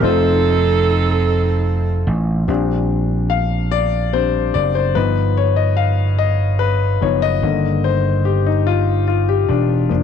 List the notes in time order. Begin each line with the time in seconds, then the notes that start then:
0.00 F1 A3 C4 D#4 F4 A4 C5
2.07 A1
2.47 A#1 G3 C4 D4
3.30 F5
3.71 D5
4.13 G3 C4 D4 C5
4.54 F#1 D5
4.75 C5
4.95 G1 F3 B3 D#4 B4
5.37 C#5
5.56 D#5
5.77 F5
6.19 D#5
6.59 B4
7.01 F#1 F3 B3 D#4 C#5
7.22 D#5
7.42 G1 D3 D#3 A#3
7.84 C5
8.25 G4
8.46 D#4
8.67 F4
9.08 F4
9.29 G4
9.49 E1 D4
9.89 F1 F3 A#3 D4